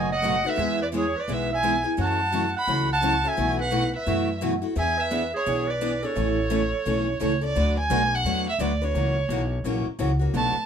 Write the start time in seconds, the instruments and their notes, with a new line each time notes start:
Already playing: upright bass F#1, clarinet D#5, violin G#5
0.12 clarinet D#5, violin F#5
0.23 steel-string acoustic guitar B2 F#3 A3 D#4 F#4 B4
0.44 steel-string acoustic guitar A3 D#4 F#4, clarinet B4, violin E5
0.57 upright bass E2, steel-string acoustic guitar E3 G#3 B3 E4 G#4
0.81 clarinet B4, violin D5
0.94 steel-string acoustic guitar E3 G#3 B3 E4 G#4, clarinet G#4, violin C#5
1.17 clarinet B4, violin D5
1.28 upright bass B1, steel-string acoustic guitar E3 G#3 B3 E4 G#4, clarinet B4
1.32 violin E5
1.52 clarinet E5, violin G#5
1.63 steel-string acoustic guitar E3 G#3 B3 E4 G#4
1.84 steel-string acoustic guitar B3 E4 G#4
1.97 upright bass F#2, steel-string acoustic guitar C#3 E3 F#3 A3 C#4 E4 F#4 A4
2.01 clarinet F#5, violin A5
2.32 steel-string acoustic guitar C#3 E3 F#3 A3 C#4 E4 F#4 A4
2.56 clarinet F#5, violin B5
2.67 upright bass C#2, steel-string acoustic guitar C#3 E3 F#3 A3 C#4 E4 F#4 A4
2.93 clarinet F#5, violin A5
3.01 steel-string acoustic guitar C#3 E3 F#3 A3 C#4 E4 F#4 A4
3.24 steel-string acoustic guitar A3 C#4 F#4, clarinet E5
3.28 violin G#5
3.37 upright bass B1, steel-string acoustic guitar B2 E3 A3 E4 F#4 B4
3.60 clarinet B4, violin F#5
3.71 steel-string acoustic guitar B2 E3 A3 E4 F#4 B4
3.94 clarinet B4, violin E5
4.06 upright bass F#2, steel-string acoustic guitar B2 E3 A3 E4 F#4 B4
4.41 steel-string acoustic guitar B2 E3 A3 E4 F#4 B4
4.62 steel-string acoustic guitar A3 E4 F#4
4.75 upright bass E2, steel-string acoustic guitar E3 B3 D4 G#4 B4, clarinet E5, violin G#5
4.98 clarinet B4, violin E5
5.11 steel-string acoustic guitar E3 B3 D4 G#4 B4
5.34 clarinet G#4, violin C#5
5.46 upright bass B1, steel-string acoustic guitar E3 B3 D4 G#4 B4
5.68 clarinet B4, violin D5
5.81 steel-string acoustic guitar E3 B3 D4 G#4 B4
6.03 steel-string acoustic guitar B3 D4 G#4, clarinet A4, violin C#5
6.16 upright bass A1, steel-string acoustic guitar C#3 E3 A3 C#4 E4 A4
6.50 steel-string acoustic guitar C#3 E3 A3 C#4 E4 A4
6.86 upright bass B1, steel-string acoustic guitar C#3 E3 A3 C#4 E4 A4
7.20 upright bass C#2, steel-string acoustic guitar C#3 E3 A3 C#4 E4 A4, violin C#5
7.41 steel-string acoustic guitar A3 C#4 A4, violin D5
7.56 upright bass D2, steel-string acoustic guitar D3 F#3 A3 D4 F#4 B4
7.79 violin G#5
7.90 upright bass B1, steel-string acoustic guitar D3 F#3 A3 D4 F#4 B4
8.15 violin F#5
8.24 upright bass E2, steel-string acoustic guitar D3 F#3 A3 D4 F#4 B4
8.49 violin E5
8.59 upright bass D2, steel-string acoustic guitar D3 F#3 A3 D4 F#4 B4, violin D5
8.82 steel-string acoustic guitar A3 D4 F#4 B4, violin C#5
8.95 upright bass C#2, steel-string acoustic guitar C#3 E3 F#3 A#3 C#4 E4 F#4 A#4
9.29 upright bass B1, steel-string acoustic guitar C#3 E3 F#3 A#3 C#4 E4 F#4 A#4
9.64 upright bass A#1, steel-string acoustic guitar C#3 E3 F#3 A#3 C#4 E4 F#4 A#4
9.86 muted upright bass stroke
9.99 upright bass C#2, steel-string acoustic guitar C#3 E3 F#3 A#3 C#4 E4 F#4 A#4
10.19 steel-string acoustic guitar A#3 C#4 F#4
10.34 upright bass B1, steel-string acoustic guitar B2 F#3 A3 D4 F#4 B4, violin A5
10.55 muted upright bass stroke